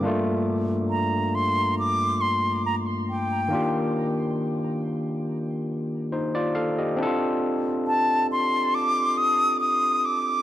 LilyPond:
<<
  \new Staff \with { instrumentName = "Flute" } { \time 4/4 \key g \minor \tempo 4 = 69 r4 bes''8 c'''8 d'''8 c'''8 bes''8 g''8~ | g''8 r2. r8 | r4 a''8 c'''8 d'''8 ees'''8 ees'''8 d'''8 | }
  \new Staff \with { instrumentName = "Tine electric piano" } { \time 4/4 \key g \minor << { r1 | r2. <ees' c''>16 <f' d''>16 <a' f''>16 <g' ees''>16~ | <g' ees''>16 r2. r8. | } \\ { <g, a bes d' f'>1 | <ees bes d' f' g'>1 | <c' d' e' f' a'>1 | } >> }
>>